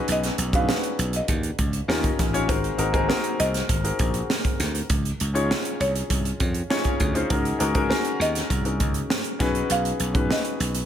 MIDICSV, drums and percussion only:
0, 0, Header, 1, 2, 480
1, 0, Start_track
1, 0, Key_signature, -5, "major"
1, 0, Tempo, 601202
1, 69, Time_signature, 4, 2, 24, 8
1, 8667, End_track
2, 0, Start_track
2, 0, Title_t, "Drums"
2, 63, Note_on_c, 9, 42, 79
2, 143, Note_off_c, 9, 42, 0
2, 188, Note_on_c, 9, 42, 42
2, 190, Note_on_c, 9, 38, 29
2, 267, Note_off_c, 9, 42, 0
2, 270, Note_off_c, 9, 38, 0
2, 305, Note_on_c, 9, 42, 63
2, 385, Note_off_c, 9, 42, 0
2, 425, Note_on_c, 9, 36, 79
2, 425, Note_on_c, 9, 42, 45
2, 504, Note_off_c, 9, 42, 0
2, 505, Note_off_c, 9, 36, 0
2, 548, Note_on_c, 9, 38, 102
2, 628, Note_off_c, 9, 38, 0
2, 667, Note_on_c, 9, 42, 45
2, 747, Note_off_c, 9, 42, 0
2, 790, Note_on_c, 9, 42, 75
2, 870, Note_off_c, 9, 42, 0
2, 903, Note_on_c, 9, 42, 45
2, 983, Note_off_c, 9, 42, 0
2, 1024, Note_on_c, 9, 42, 90
2, 1026, Note_on_c, 9, 36, 82
2, 1104, Note_off_c, 9, 42, 0
2, 1105, Note_off_c, 9, 36, 0
2, 1144, Note_on_c, 9, 42, 44
2, 1224, Note_off_c, 9, 42, 0
2, 1266, Note_on_c, 9, 42, 61
2, 1268, Note_on_c, 9, 36, 78
2, 1346, Note_off_c, 9, 42, 0
2, 1348, Note_off_c, 9, 36, 0
2, 1382, Note_on_c, 9, 42, 43
2, 1462, Note_off_c, 9, 42, 0
2, 1514, Note_on_c, 9, 38, 93
2, 1594, Note_off_c, 9, 38, 0
2, 1627, Note_on_c, 9, 42, 45
2, 1629, Note_on_c, 9, 36, 70
2, 1707, Note_off_c, 9, 42, 0
2, 1708, Note_off_c, 9, 36, 0
2, 1750, Note_on_c, 9, 36, 82
2, 1750, Note_on_c, 9, 42, 53
2, 1755, Note_on_c, 9, 38, 26
2, 1830, Note_off_c, 9, 36, 0
2, 1830, Note_off_c, 9, 42, 0
2, 1835, Note_off_c, 9, 38, 0
2, 1871, Note_on_c, 9, 42, 44
2, 1951, Note_off_c, 9, 42, 0
2, 1987, Note_on_c, 9, 42, 86
2, 1988, Note_on_c, 9, 36, 98
2, 2067, Note_off_c, 9, 42, 0
2, 2068, Note_off_c, 9, 36, 0
2, 2109, Note_on_c, 9, 42, 41
2, 2189, Note_off_c, 9, 42, 0
2, 2224, Note_on_c, 9, 42, 66
2, 2304, Note_off_c, 9, 42, 0
2, 2346, Note_on_c, 9, 36, 80
2, 2346, Note_on_c, 9, 42, 42
2, 2426, Note_off_c, 9, 36, 0
2, 2426, Note_off_c, 9, 42, 0
2, 2471, Note_on_c, 9, 38, 100
2, 2551, Note_off_c, 9, 38, 0
2, 2586, Note_on_c, 9, 42, 45
2, 2666, Note_off_c, 9, 42, 0
2, 2713, Note_on_c, 9, 42, 69
2, 2792, Note_off_c, 9, 42, 0
2, 2829, Note_on_c, 9, 42, 46
2, 2838, Note_on_c, 9, 38, 29
2, 2909, Note_off_c, 9, 42, 0
2, 2917, Note_off_c, 9, 38, 0
2, 2948, Note_on_c, 9, 36, 83
2, 2948, Note_on_c, 9, 42, 89
2, 3028, Note_off_c, 9, 36, 0
2, 3028, Note_off_c, 9, 42, 0
2, 3071, Note_on_c, 9, 42, 48
2, 3151, Note_off_c, 9, 42, 0
2, 3186, Note_on_c, 9, 42, 61
2, 3190, Note_on_c, 9, 36, 81
2, 3266, Note_off_c, 9, 42, 0
2, 3270, Note_off_c, 9, 36, 0
2, 3305, Note_on_c, 9, 42, 42
2, 3385, Note_off_c, 9, 42, 0
2, 3432, Note_on_c, 9, 38, 98
2, 3512, Note_off_c, 9, 38, 0
2, 3550, Note_on_c, 9, 42, 47
2, 3551, Note_on_c, 9, 36, 75
2, 3630, Note_off_c, 9, 42, 0
2, 3631, Note_off_c, 9, 36, 0
2, 3671, Note_on_c, 9, 42, 60
2, 3676, Note_on_c, 9, 38, 30
2, 3751, Note_off_c, 9, 42, 0
2, 3756, Note_off_c, 9, 38, 0
2, 3790, Note_on_c, 9, 42, 45
2, 3870, Note_off_c, 9, 42, 0
2, 3909, Note_on_c, 9, 42, 84
2, 3911, Note_on_c, 9, 36, 103
2, 3989, Note_off_c, 9, 42, 0
2, 3991, Note_off_c, 9, 36, 0
2, 4035, Note_on_c, 9, 42, 44
2, 4115, Note_off_c, 9, 42, 0
2, 4153, Note_on_c, 9, 42, 65
2, 4232, Note_off_c, 9, 42, 0
2, 4274, Note_on_c, 9, 42, 44
2, 4354, Note_off_c, 9, 42, 0
2, 4399, Note_on_c, 9, 38, 110
2, 4478, Note_off_c, 9, 38, 0
2, 4512, Note_on_c, 9, 42, 45
2, 4592, Note_off_c, 9, 42, 0
2, 4636, Note_on_c, 9, 42, 72
2, 4716, Note_off_c, 9, 42, 0
2, 4754, Note_on_c, 9, 42, 48
2, 4834, Note_off_c, 9, 42, 0
2, 4871, Note_on_c, 9, 42, 89
2, 4872, Note_on_c, 9, 36, 80
2, 4951, Note_off_c, 9, 36, 0
2, 4951, Note_off_c, 9, 42, 0
2, 4993, Note_on_c, 9, 42, 42
2, 5073, Note_off_c, 9, 42, 0
2, 5109, Note_on_c, 9, 42, 64
2, 5113, Note_on_c, 9, 36, 87
2, 5189, Note_off_c, 9, 42, 0
2, 5193, Note_off_c, 9, 36, 0
2, 5225, Note_on_c, 9, 42, 40
2, 5305, Note_off_c, 9, 42, 0
2, 5353, Note_on_c, 9, 38, 111
2, 5433, Note_off_c, 9, 38, 0
2, 5464, Note_on_c, 9, 42, 47
2, 5469, Note_on_c, 9, 36, 70
2, 5544, Note_off_c, 9, 42, 0
2, 5549, Note_off_c, 9, 36, 0
2, 5588, Note_on_c, 9, 42, 55
2, 5591, Note_on_c, 9, 36, 78
2, 5667, Note_off_c, 9, 42, 0
2, 5671, Note_off_c, 9, 36, 0
2, 5710, Note_on_c, 9, 42, 43
2, 5790, Note_off_c, 9, 42, 0
2, 5830, Note_on_c, 9, 42, 83
2, 5831, Note_on_c, 9, 36, 107
2, 5909, Note_off_c, 9, 42, 0
2, 5911, Note_off_c, 9, 36, 0
2, 5951, Note_on_c, 9, 42, 41
2, 6031, Note_off_c, 9, 42, 0
2, 6069, Note_on_c, 9, 42, 63
2, 6149, Note_off_c, 9, 42, 0
2, 6185, Note_on_c, 9, 42, 46
2, 6188, Note_on_c, 9, 36, 84
2, 6265, Note_off_c, 9, 42, 0
2, 6268, Note_off_c, 9, 36, 0
2, 6312, Note_on_c, 9, 38, 110
2, 6392, Note_off_c, 9, 38, 0
2, 6424, Note_on_c, 9, 42, 44
2, 6504, Note_off_c, 9, 42, 0
2, 6556, Note_on_c, 9, 42, 70
2, 6635, Note_off_c, 9, 42, 0
2, 6669, Note_on_c, 9, 42, 50
2, 6678, Note_on_c, 9, 38, 33
2, 6749, Note_off_c, 9, 42, 0
2, 6758, Note_off_c, 9, 38, 0
2, 6788, Note_on_c, 9, 36, 85
2, 6790, Note_on_c, 9, 42, 87
2, 6868, Note_off_c, 9, 36, 0
2, 6870, Note_off_c, 9, 42, 0
2, 6908, Note_on_c, 9, 42, 42
2, 6988, Note_off_c, 9, 42, 0
2, 7026, Note_on_c, 9, 42, 60
2, 7028, Note_on_c, 9, 36, 92
2, 7106, Note_off_c, 9, 42, 0
2, 7108, Note_off_c, 9, 36, 0
2, 7140, Note_on_c, 9, 42, 43
2, 7220, Note_off_c, 9, 42, 0
2, 7268, Note_on_c, 9, 38, 104
2, 7348, Note_off_c, 9, 38, 0
2, 7380, Note_on_c, 9, 42, 46
2, 7460, Note_off_c, 9, 42, 0
2, 7506, Note_on_c, 9, 36, 88
2, 7506, Note_on_c, 9, 42, 57
2, 7511, Note_on_c, 9, 38, 28
2, 7586, Note_off_c, 9, 36, 0
2, 7586, Note_off_c, 9, 42, 0
2, 7591, Note_off_c, 9, 38, 0
2, 7624, Note_on_c, 9, 42, 45
2, 7704, Note_off_c, 9, 42, 0
2, 7743, Note_on_c, 9, 42, 86
2, 7823, Note_off_c, 9, 42, 0
2, 7865, Note_on_c, 9, 42, 42
2, 7945, Note_off_c, 9, 42, 0
2, 7982, Note_on_c, 9, 42, 67
2, 8062, Note_off_c, 9, 42, 0
2, 8101, Note_on_c, 9, 42, 44
2, 8102, Note_on_c, 9, 36, 83
2, 8181, Note_off_c, 9, 42, 0
2, 8182, Note_off_c, 9, 36, 0
2, 8228, Note_on_c, 9, 38, 104
2, 8308, Note_off_c, 9, 38, 0
2, 8341, Note_on_c, 9, 42, 45
2, 8421, Note_off_c, 9, 42, 0
2, 8466, Note_on_c, 9, 42, 74
2, 8546, Note_off_c, 9, 42, 0
2, 8579, Note_on_c, 9, 42, 49
2, 8659, Note_off_c, 9, 42, 0
2, 8667, End_track
0, 0, End_of_file